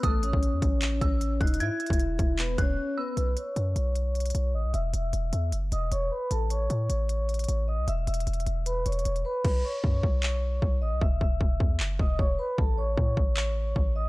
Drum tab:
CC |------------------------------------------------------------------------------------------------|------------------------------------------------------------------------------------------------|------------------------------------------------------------------------------------------------|------------------------------------------------------------------------------------------------|
HH |x-----------x-----------x-----------x-----------x-----------x-----------x-----------x---x---x---|x-----------x---x---x---x-----------x-----------x-----------x-----------------------------------|x-----------x-----------x-----------x-----------x-----------x--x--x--x--x-----------------------|x-----------x-----------x-----------x-----------x-----------x-----------x-----------------------|
CP |------------------------------------------------x-----------------------------------------------|------------------------------------------------x-----------------------------------------------|------------------------------------------------------------------------------------------------|------------------------------------------------------------------------------------------------|
BD |o-----------------o-----------------o-----------------------o-----------------------o-----------|------------------o-----------------o-----------------------o-----------------------------------|------------------------------------------------------------------------------------------------|------------------------------------------------------------------------------------------------|

CC |------------------------------------------------------------------------------------------------|------------------------------------------------------------------------------------------------|x-----------------------------------------------------------------------------------------------|------------------------------------------------------------------------------------------------|
HH |x-----------x-----------x-----------x-----------x-----------x--x--x--x--x-----------------------|x-----------x---x---x---x---x---x---x-----------x-----------x---x---x---x-----x-----------------|------------------------------------------------------------------------------------------------|------------------------------------------------------------------------------------------------|
CP |------------------------------------------------------------------------------------------------|------------------------------------------------------------------------------------------------|------------------------------------------------x-----------------------------------------------|------------------------------------------------x-----------------------------------------------|
BD |------------------------------------------------------------------------------------------------|------------------------------------------------------------------------------------------------|o-----------------------o-----------o-----------------------------------o-----------------------|o-----------o-----------o-----------o-----------------------o-----------o-----------------------|

CC |------------------------------------------------------------------------------------------------|
HH |------------------------------------------------------------------------------------------------|
CP |------------------------------------------------x-----------------------------------------------|
BD |o-----------------------o-----------o-----------------------------------o-----------------------|